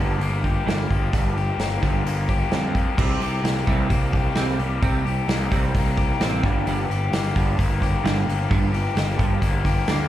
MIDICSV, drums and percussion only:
0, 0, Header, 1, 2, 480
1, 0, Start_track
1, 0, Tempo, 460123
1, 1179, Time_signature, 4, 2, 24, 8
1, 10515, End_track
2, 0, Start_track
2, 0, Title_t, "Drums"
2, 220, Note_on_c, 9, 46, 57
2, 325, Note_off_c, 9, 46, 0
2, 460, Note_on_c, 9, 36, 73
2, 469, Note_on_c, 9, 46, 46
2, 565, Note_off_c, 9, 36, 0
2, 573, Note_off_c, 9, 46, 0
2, 711, Note_on_c, 9, 46, 59
2, 716, Note_on_c, 9, 38, 101
2, 816, Note_off_c, 9, 46, 0
2, 820, Note_off_c, 9, 38, 0
2, 944, Note_on_c, 9, 36, 80
2, 952, Note_on_c, 9, 46, 50
2, 1049, Note_off_c, 9, 36, 0
2, 1057, Note_off_c, 9, 46, 0
2, 1182, Note_on_c, 9, 36, 108
2, 1186, Note_on_c, 9, 46, 67
2, 1287, Note_off_c, 9, 36, 0
2, 1290, Note_off_c, 9, 46, 0
2, 1433, Note_on_c, 9, 46, 43
2, 1537, Note_off_c, 9, 46, 0
2, 1664, Note_on_c, 9, 46, 61
2, 1668, Note_on_c, 9, 38, 101
2, 1768, Note_off_c, 9, 46, 0
2, 1772, Note_off_c, 9, 38, 0
2, 1906, Note_on_c, 9, 36, 83
2, 1909, Note_on_c, 9, 46, 49
2, 2011, Note_off_c, 9, 36, 0
2, 2014, Note_off_c, 9, 46, 0
2, 2153, Note_on_c, 9, 46, 63
2, 2258, Note_off_c, 9, 46, 0
2, 2387, Note_on_c, 9, 36, 71
2, 2387, Note_on_c, 9, 46, 49
2, 2491, Note_off_c, 9, 46, 0
2, 2492, Note_off_c, 9, 36, 0
2, 2623, Note_on_c, 9, 46, 64
2, 2628, Note_on_c, 9, 38, 98
2, 2728, Note_off_c, 9, 46, 0
2, 2732, Note_off_c, 9, 38, 0
2, 2868, Note_on_c, 9, 36, 85
2, 2874, Note_on_c, 9, 46, 50
2, 2972, Note_off_c, 9, 36, 0
2, 2978, Note_off_c, 9, 46, 0
2, 3110, Note_on_c, 9, 36, 113
2, 3115, Note_on_c, 9, 49, 119
2, 3214, Note_off_c, 9, 36, 0
2, 3219, Note_off_c, 9, 49, 0
2, 3350, Note_on_c, 9, 46, 51
2, 3454, Note_off_c, 9, 46, 0
2, 3596, Note_on_c, 9, 46, 76
2, 3600, Note_on_c, 9, 38, 106
2, 3700, Note_off_c, 9, 46, 0
2, 3704, Note_off_c, 9, 38, 0
2, 3831, Note_on_c, 9, 46, 55
2, 3832, Note_on_c, 9, 36, 87
2, 3935, Note_off_c, 9, 46, 0
2, 3936, Note_off_c, 9, 36, 0
2, 4071, Note_on_c, 9, 36, 87
2, 4071, Note_on_c, 9, 46, 70
2, 4175, Note_off_c, 9, 36, 0
2, 4175, Note_off_c, 9, 46, 0
2, 4310, Note_on_c, 9, 46, 50
2, 4311, Note_on_c, 9, 36, 79
2, 4414, Note_off_c, 9, 46, 0
2, 4416, Note_off_c, 9, 36, 0
2, 4541, Note_on_c, 9, 46, 71
2, 4545, Note_on_c, 9, 38, 100
2, 4645, Note_off_c, 9, 46, 0
2, 4650, Note_off_c, 9, 38, 0
2, 4792, Note_on_c, 9, 46, 55
2, 4897, Note_off_c, 9, 46, 0
2, 5032, Note_on_c, 9, 46, 77
2, 5034, Note_on_c, 9, 36, 119
2, 5137, Note_off_c, 9, 46, 0
2, 5138, Note_off_c, 9, 36, 0
2, 5285, Note_on_c, 9, 46, 56
2, 5389, Note_off_c, 9, 46, 0
2, 5517, Note_on_c, 9, 46, 75
2, 5521, Note_on_c, 9, 38, 102
2, 5621, Note_off_c, 9, 46, 0
2, 5625, Note_off_c, 9, 38, 0
2, 5756, Note_on_c, 9, 36, 89
2, 5758, Note_on_c, 9, 46, 56
2, 5860, Note_off_c, 9, 36, 0
2, 5862, Note_off_c, 9, 46, 0
2, 5995, Note_on_c, 9, 36, 88
2, 6000, Note_on_c, 9, 46, 82
2, 6100, Note_off_c, 9, 36, 0
2, 6104, Note_off_c, 9, 46, 0
2, 6233, Note_on_c, 9, 36, 83
2, 6234, Note_on_c, 9, 46, 60
2, 6337, Note_off_c, 9, 36, 0
2, 6338, Note_off_c, 9, 46, 0
2, 6474, Note_on_c, 9, 46, 80
2, 6478, Note_on_c, 9, 38, 94
2, 6578, Note_off_c, 9, 46, 0
2, 6583, Note_off_c, 9, 38, 0
2, 6713, Note_on_c, 9, 36, 99
2, 6715, Note_on_c, 9, 46, 64
2, 6817, Note_off_c, 9, 36, 0
2, 6819, Note_off_c, 9, 46, 0
2, 6957, Note_on_c, 9, 46, 85
2, 7061, Note_off_c, 9, 46, 0
2, 7209, Note_on_c, 9, 46, 49
2, 7313, Note_off_c, 9, 46, 0
2, 7440, Note_on_c, 9, 46, 79
2, 7444, Note_on_c, 9, 38, 106
2, 7544, Note_off_c, 9, 46, 0
2, 7548, Note_off_c, 9, 38, 0
2, 7678, Note_on_c, 9, 36, 91
2, 7683, Note_on_c, 9, 46, 57
2, 7782, Note_off_c, 9, 36, 0
2, 7787, Note_off_c, 9, 46, 0
2, 7917, Note_on_c, 9, 36, 93
2, 7927, Note_on_c, 9, 46, 78
2, 8021, Note_off_c, 9, 36, 0
2, 8031, Note_off_c, 9, 46, 0
2, 8157, Note_on_c, 9, 36, 78
2, 8165, Note_on_c, 9, 46, 56
2, 8261, Note_off_c, 9, 36, 0
2, 8269, Note_off_c, 9, 46, 0
2, 8400, Note_on_c, 9, 46, 72
2, 8404, Note_on_c, 9, 38, 103
2, 8505, Note_off_c, 9, 46, 0
2, 8509, Note_off_c, 9, 38, 0
2, 8652, Note_on_c, 9, 46, 51
2, 8757, Note_off_c, 9, 46, 0
2, 8877, Note_on_c, 9, 36, 112
2, 8887, Note_on_c, 9, 46, 72
2, 8981, Note_off_c, 9, 36, 0
2, 8991, Note_off_c, 9, 46, 0
2, 9119, Note_on_c, 9, 46, 49
2, 9223, Note_off_c, 9, 46, 0
2, 9354, Note_on_c, 9, 46, 73
2, 9358, Note_on_c, 9, 38, 101
2, 9458, Note_off_c, 9, 46, 0
2, 9463, Note_off_c, 9, 38, 0
2, 9590, Note_on_c, 9, 36, 92
2, 9598, Note_on_c, 9, 46, 58
2, 9694, Note_off_c, 9, 36, 0
2, 9702, Note_off_c, 9, 46, 0
2, 9828, Note_on_c, 9, 36, 82
2, 9832, Note_on_c, 9, 46, 75
2, 9932, Note_off_c, 9, 36, 0
2, 9937, Note_off_c, 9, 46, 0
2, 10066, Note_on_c, 9, 36, 86
2, 10073, Note_on_c, 9, 46, 63
2, 10170, Note_off_c, 9, 36, 0
2, 10177, Note_off_c, 9, 46, 0
2, 10302, Note_on_c, 9, 46, 73
2, 10306, Note_on_c, 9, 38, 105
2, 10407, Note_off_c, 9, 46, 0
2, 10411, Note_off_c, 9, 38, 0
2, 10515, End_track
0, 0, End_of_file